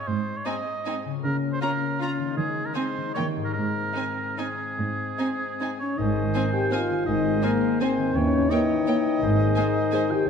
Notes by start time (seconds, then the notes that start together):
Already playing: G#2 C4 D#4 G#4
0.08 G#2 C5
0.37 C#5
0.46 G#3 C4 D#4 D#5 G#5
0.85 G#3 C4 D#4 G#5
1.05 C#3
1.10 C#4
1.14 F4
1.19 A#4
1.24 C#3 A#3 C#4 A#4
1.53 C5
1.61 A#3 C#4 F4 A#4 A#5
2.00 A#3 C#4 F4 A#5
2.19 D#3
2.23 C4
2.28 D#4
2.32 G#4
2.37 D#3 G#3 D#4 G#4
2.66 A#4
2.74 G#3 C4 D#4 C5 G#5
2.98 D#3
3.02 A#3
3.06 D#4
3.11 D#4 G4 C#5
3.16 D#3 G3 A#3 D#4 G5
3.36 G#2
3.41 C4 A#4
3.45 D#4
3.50 G#4 A#4
3.55 G#2 G#3 C4
3.94 C4 D#4 G#5
4.38 G#3 C4 D#4 G#4 G#5
4.79 G#2
5.19 C4 D#4 G#5
5.60 C4 D#4 G#5
5.80 C#4 C#5
5.97 G#1 G#2 D#3 D#4 C5 D#5 G#5
6.15 G#4
6.35 C4 D#4 C5 G#5
6.53 C4 G4 G5
6.71 C4 D#4 F4 C5 F5 G#5
6.90 D#3
7.06 G#1 G#2 D#3 D#4 C5 D#5 G#5
7.25 G#4
7.43 A#3 C4 D#4 A#4 C5 G#5
7.62 C4
7.81 D#3 C4 D#4 C5 G#5
7.98 D#3
8.15 D#2 D#3 E3 C#4 C#5 G5
8.32 G4
8.50 E3 A#3 D#4 E4 C#5 D#5 G5
8.68 C#4
8.86 A#3 E4 C#5 G5
9.05 A#3
9.22 G#1 G#2 D#3 C5 G#5
9.39 G#4
9.56 G#3 D#4 C5 G#5
9.75 C4
9.92 G#3 D#4 C5 G#5
10.10 D#3 G4 G5